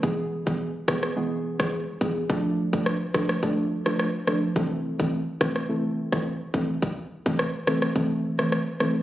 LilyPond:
<<
  \new Staff \with { instrumentName = "Synth stab" } { \time 4/4 \key a \minor \tempo 4 = 106 <e gis b gis'>8. <e gis b gis'>16 r8 <e gis b gis'>8 <e gis b gis'>8. <e gis b gis'>16 r8 <e gis b gis'>8 | <f a d' a'>8. <f a d' a'>16 r8 <f a d' a'>8 <f a d' a'>8. <f a d' a'>16 r8 <f a d' a'>8 | <e a c' a'>8. <e a c' a'>16 r8 <e a c' a'>8 <e a c' a'>8. <e a c' a'>16 r8 <e a c' a'>8 | r8. <e a c' a'>16 r8 <e a c' a'>8 <e a c' a'>8. <e a c' a'>16 r8 <e a c' a'>8 | }
  \new DrumStaff \with { instrumentName = "Drums" } \drummode { \time 4/4 bd8. bd16 r8 <bd ss>16 ss16 r8. <bd ss>16 r8 bd8 | bd8. bd16 ss8 <bd ss>16 ss16 bd8. ss16 ss8 ss8 | bd8. bd16 r8 <bd ss>16 ss16 r8. <bd ss>16 r8 bd8 | bd8. bd16 ss8 ss16 ss16 bd8. ss16 ss8 ss8 | }
>>